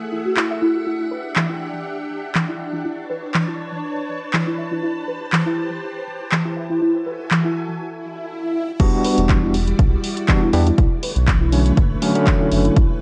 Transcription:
Already playing: A3 G#4 E5 F#5
0.12 E4
0.25 F#4
0.37 E4, clap
0.50 E5
0.62 E4
0.75 F#4
0.86 D4 E4 G4
1.11 B4
1.36 E3, clap
1.49 E4
2.35 E3, clap
2.48 E4
2.60 E5
2.73 E4
2.85 E4 B4 C#5 A5
3.10 B4
3.34 E3, clap
3.48 E4
4.33 E3, clap
4.47 E4
4.58 E5
4.71 E4
4.83 E4 G4 C5
5.08 B4
5.33 E3, clap
5.46 E4
6.32 E3, clap
6.45 E4
6.57 E5
6.70 E4
6.81 E4 F#4 A4 E5 G#5
7.06 B4
7.31 E3, clap
7.44 E4
7.81 swell
8.80 E1 G3 B3 D4 E4 F#4 D5, kick, closed hi-hat, crash
9.04 B4, open hi-hat
9.18 E1, closed hi-hat
9.29 E3, kick, clap, closed hi-hat
9.43 E4
9.54 open hi-hat
9.67 closed hi-hat
9.79 B1, kick, closed hi-hat
10.04 open hi-hat
10.17 closed hi-hat
10.28 E3 G3 B3 D4 F#4, kick, clap, closed hi-hat
10.42 E4
10.53 E2 G3 B3 D4 G4 E5, open hi-hat
10.67 E4, closed hi-hat
10.78 B1 D3 A3 B4 C#5, kick, closed hi-hat
11.03 B4, open hi-hat
11.16 B1, closed hi-hat
11.28 E3, kick, clap, closed hi-hat
11.41 E4
11.52 D3 F#3 A3 C#4, open hi-hat
11.66 closed hi-hat
11.77 F#1, kick, closed hi-hat
12.02 D3 F#3 A3 C#4, open hi-hat
12.15 D3 F#3 A3 C#4, closed hi-hat
12.27 E3, kick, clap, closed hi-hat
12.40 E4
12.52 F#1 E5, open hi-hat
12.65 E4, closed hi-hat
12.76 A1 C4 G4, kick, closed hi-hat

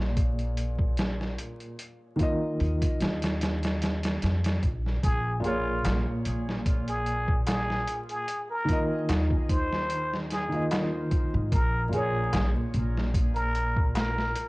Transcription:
Already playing: A#1 A#2 A#3 G#4 C#5
0.00 snare
0.17 kick, closed hi-hat
0.39 closed hi-hat
0.57 closed hi-hat
0.79 kick
0.98 snare, closed hi-hat
1.21 snare
1.39 closed hi-hat
1.60 closed hi-hat
1.79 closed hi-hat
2.16 D#3 A#3, kick, closed hi-hat
2.20 F4 D#5
2.60 D#2, closed hi-hat
2.82 kick, closed hi-hat
3.01 D#2, snare, closed hi-hat
3.22 snare, closed hi-hat
3.41 snare, closed hi-hat
3.63 snare, closed hi-hat
3.82 snare, closed hi-hat
4.03 snare, closed hi-hat
4.22 F2, snare, closed hi-hat
4.44 snare, closed hi-hat
4.63 A#1, kick, closed hi-hat
4.86 snare
5.03 A#1 G#4, kick, closed hi-hat
5.40 A#2 A#3 F4
5.44 G#4 C#5, closed hi-hat
5.85 A#1, snare, closed hi-hat, darbuka tek
6.25 A#1, closed hi-hat
6.49 snare
6.66 kick, closed hi-hat
6.88 G#4, closed hi-hat
7.06 closed hi-hat
7.28 kick
7.47 G#4, snare, closed hi-hat, darbuka tek
7.70 snare
7.88 closed hi-hat
8.09 G#4, closed hi-hat
8.28 closed hi-hat
8.50 A#4
8.65 D#3 A#3, kick, closed hi-hat
8.70 F4 D#5
9.09 D#2, snare, closed hi-hat, darbuka tek
9.31 kick
9.49 D#2 C5, kick, closed hi-hat
9.73 snare
9.90 closed hi-hat
10.14 snare
10.30 G#4, snare, closed hi-hat
10.49 D#3 A#3, closed hi-hat
10.53 F4 D#5
10.71 snare, closed hi-hat, darbuka tek
11.11 A#1, kick, closed hi-hat
11.34 G#2
11.52 A#1 A#4, kick, closed hi-hat
11.89 A#2 A#3, closed hi-hat
11.93 G#4 C#5
12.33 A#1, snare, closed hi-hat, darbuka tek
12.74 A#1, closed hi-hat
12.97 snare
13.14 kick, closed hi-hat
13.35 A#4, closed hi-hat
13.55 closed hi-hat
13.76 kick
13.95 A#4, snare, closed hi-hat, darbuka tek
14.19 snare
14.36 closed hi-hat

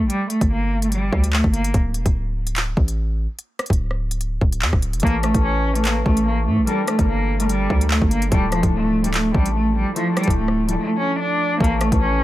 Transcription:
0.00 A1
0.10 G3, closed hi-hat
0.30 A3, closed hi-hat
0.41 G1, kick, closed hi-hat
0.51 A#3
0.82 A3, closed hi-hat
0.92 G3, closed hi-hat
1.13 D2, kick
1.24 closed hi-hat
1.33 A3, clap
1.44 G1, kick
1.54 A#3, closed hi-hat
1.64 closed hi-hat
1.74 D1, kick, closed hi-hat
1.94 E1, closed hi-hat
2.06 D1, kick, closed hi-hat
2.47 closed hi-hat
2.56 clap, closed hi-hat
2.77 A1, kick
2.88 closed hi-hat
3.39 closed hi-hat
3.59 cross-stick, closed hi-hat
3.66 closed hi-hat
3.70 D1, kick, closed hi-hat
3.91 cross-stick
4.11 closed hi-hat
4.21 closed hi-hat
4.41 D1, kick
4.52 closed hi-hat
4.62 F2, clap
4.73 D1, kick, cross-stick
4.82 closed hi-hat
4.93 F1, closed hi-hat
5.00 A1 E3 A3 A#3 C#4 A4, kick, closed hi-hat
5.04 C#5, closed hi-hat
5.23 A3, cross-stick, closed hi-hat
5.33 A1 E3 A3 C#4 A4 C#5, kick, closed hi-hat
5.44 C#4
5.74 E3 A3 C#4 A4 C#5, closed hi-hat
5.85 A#3, clap, closed hi-hat
6.04 A1 E3 A3 C#4 A4 C#5, kick
6.17 closed hi-hat
6.26 A#3
6.47 A2 A3
6.58 A1
6.66 G3 A#3 D4 A4 A#4, closed hi-hat
6.87 A3, cross-stick, closed hi-hat
6.98 G1 G3 A#3 D4 A4 A#4, kick, closed hi-hat
7.08 A#3
7.39 G3 A3 A#3 D4 A4 A#4, closed hi-hat
7.49 G3, closed hi-hat
7.70 D2, kick
7.81 closed hi-hat
7.91 A3, clap
8.02 G1, kick
8.11 A#3, closed hi-hat
8.22 closed hi-hat
8.31 D1 F3 G3 A3 D4 E4 A4, kick, closed hi-hat
8.52 E1 F3, cross-stick, closed hi-hat
8.62 D1 F3 A3 D4 E4 A4, kick, closed hi-hat
8.73 A3
9.03 F3 G3 A3 D4 E4 A4, closed hi-hat
9.14 A3, clap, closed hi-hat
9.33 A1 F3 G3 A3 D4 E4 A4, kick
9.46 closed hi-hat
9.55 A3
9.76 G3
9.95 F3 A3 D4 E4 A4, closed hi-hat
10.17 G3, cross-stick, closed hi-hat
10.24 F3 A3, closed hi-hat
10.28 D1 D4 E4 G4, kick, closed hi-hat
10.37 A3
10.48 cross-stick
10.67 F3 G3 A3 D4 E4 A4, closed hi-hat
10.78 A3
10.99 C#4
11.19 D4
11.59 A1 E3 A3 A#3 C#4 A4 C#5, kick
11.64 closed hi-hat
11.81 A3, cross-stick, closed hi-hat
11.91 A1 E3 A3 C#4 A4 C#5, kick, closed hi-hat
12.02 C#4

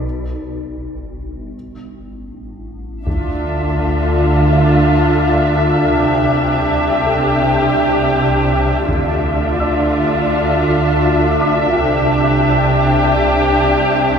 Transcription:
3.06 D2 D3 D4 F4 A4 E5, taiko
4.52 E5
5.98 C2 C3 G4 D5
7.05 A4 A5
8.87 D2 D3 D4 F4 E5, taiko
9.60 D5 E6
11.41 D6
11.75 C2 C3 G4 D5

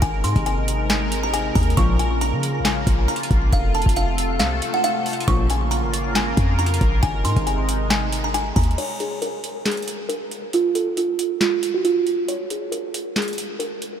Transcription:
0.02 G#1 C3 G#3 D#4 A#4 G#5, kick, closed hi-hat
0.24 G#2 C6, closed hi-hat
0.36 G#1, kick, closed hi-hat
0.46 G#5, closed hi-hat
0.68 closed hi-hat
0.90 G#5, snare, clap, closed hi-hat
1.12 closed hi-hat
1.23 A#5
1.34 G#5, closed hi-hat
1.55 D#2 A#5, kick, closed hi-hat, open hi-hat
1.63 closed hi-hat
1.70 closed hi-hat
1.77 A#1 C#2 A#2 C#3 F3 A#3 F4 C#6, kick, closed hi-hat
1.99 G#5, closed hi-hat
2.21 A#5, closed hi-hat
2.33 C#3
2.43 closed hi-hat
2.60 A#1
2.65 G#5, snare, clap, closed hi-hat
2.87 A#1, kick, closed hi-hat
3.08 A#5, closed hi-hat
3.16 closed hi-hat
3.23 closed hi-hat
3.31 A#1, kick, closed hi-hat
3.53 F1 C3 A3 A4 F5, kick, closed hi-hat
3.74 A5, closed hi-hat
3.82 closed hi-hat
3.86 F1, kick, closed hi-hat
3.96 F5, closed hi-hat
4.18 closed hi-hat
4.39 C2 F5, snare, clap, closed hi-hat
4.62 closed hi-hat
4.74 F#5
4.84 F5, closed hi-hat
5.06 closed hi-hat, open hi-hat
5.13 closed hi-hat
5.20 closed hi-hat
5.28 A#1 C#2 A#2 C#3 F3 A#3 F4 A#4 C#6, kick, closed hi-hat
5.50 G#5, closed hi-hat
5.71 A#5, closed hi-hat
5.83 G#1
5.94 closed hi-hat
6.15 G#5, snare, clap, closed hi-hat
6.37 F2, kick, closed hi-hat
6.59 A#5, closed hi-hat
6.66 closed hi-hat
6.74 closed hi-hat
6.81 A#1, kick, closed hi-hat
7.03 G#1 C3 G#3 D#4 G#5, kick, closed hi-hat
7.25 G#2 C6, closed hi-hat
7.36 G#1, kick, closed hi-hat
7.47 G#5, closed hi-hat
7.69 closed hi-hat
7.90 G#5, snare, clap, closed hi-hat
8.12 closed hi-hat
8.24 A#5
8.34 G#5, closed hi-hat
8.56 D#2 A#5, kick, closed hi-hat, open hi-hat
8.64 closed hi-hat
8.71 closed hi-hat
8.78 C#5, closed hi-hat, crash
9.00 G#4, closed hi-hat
9.22 A#4, closed hi-hat
9.44 closed hi-hat
9.66 G#4, snare, clap, closed hi-hat
9.71 closed hi-hat
9.77 closed hi-hat
9.82 closed hi-hat
9.88 closed hi-hat
10.09 A#4, closed hi-hat
10.31 closed hi-hat
10.53 F4, closed hi-hat
10.75 A4, closed hi-hat
10.97 F4, closed hi-hat
11.19 closed hi-hat
11.40 F4, snare, clap, closed hi-hat
11.63 closed hi-hat
11.74 F#4
11.85 F4, closed hi-hat
12.07 closed hi-hat
12.28 C#5, closed hi-hat
12.50 G#4, closed hi-hat
12.72 A#4, closed hi-hat
12.94 closed hi-hat
13.16 G#4, snare, clap, closed hi-hat
13.22 closed hi-hat
13.28 closed hi-hat
13.33 closed hi-hat
13.38 closed hi-hat
13.59 A#4, closed hi-hat
13.82 closed hi-hat

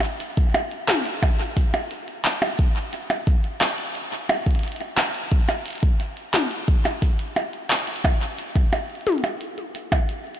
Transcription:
0.00 closed hi-hat, percussion blips
0.20 closed hi-hat
0.37 kick, closed hi-hat
0.54 closed hi-hat, percussion blips
0.71 closed hi-hat
0.89 clap, closed hi-hat, high tom
1.06 closed hi-hat
1.23 kick, closed hi-hat, percussion blips
1.40 closed hi-hat
1.57 kick, closed hi-hat
1.74 closed hi-hat, percussion blips
1.91 closed hi-hat
2.08 closed hi-hat
2.25 clap, closed hi-hat
2.42 closed hi-hat, percussion blips
2.59 kick, closed hi-hat
2.76 closed hi-hat
2.93 closed hi-hat
3.10 closed hi-hat, percussion blips
3.27 kick, closed hi-hat
3.44 closed hi-hat
3.61 clap, percussion blips
3.78 closed hi-hat
3.95 closed hi-hat
4.12 closed hi-hat
4.29 closed hi-hat, percussion blips
4.46 kick, closed hi-hat
4.51 closed hi-hat
4.55 closed hi-hat
4.59 closed hi-hat
4.63 closed hi-hat
4.68 closed hi-hat
4.72 closed hi-hat
4.76 closed hi-hat
4.81 closed hi-hat
4.98 clap, closed hi-hat, percussion blips
5.15 closed hi-hat
5.32 kick, closed hi-hat
5.49 closed hi-hat, percussion blips
5.66 closed hi-hat
5.68 closed hi-hat
5.71 closed hi-hat
5.73 closed hi-hat
5.76 closed hi-hat
5.78 closed hi-hat
5.80 kick, closed hi-hat
5.83 closed hi-hat
6.00 closed hi-hat
6.17 closed hi-hat
6.34 clap, closed hi-hat, high tom
6.51 closed hi-hat
6.68 kick, closed hi-hat
6.85 closed hi-hat, percussion blips
7.02 kick, closed hi-hat
7.19 closed hi-hat
7.36 closed hi-hat, percussion blips
7.53 closed hi-hat
7.70 clap, closed hi-hat
7.79 closed hi-hat
7.87 closed hi-hat
7.96 closed hi-hat
8.04 kick, closed hi-hat, percussion blips
8.22 closed hi-hat
8.39 closed hi-hat
8.56 kick, closed hi-hat
8.73 closed hi-hat, percussion blips
8.90 closed hi-hat
8.95 closed hi-hat
9.01 closed hi-hat
9.07 closed hi-hat, high tom
9.12 closed hi-hat
9.18 closed hi-hat
9.24 closed hi-hat, percussion blips
9.41 closed hi-hat
9.58 closed hi-hat
9.75 closed hi-hat
9.92 kick, closed hi-hat, percussion blips
10.09 closed hi-hat
10.35 closed hi-hat

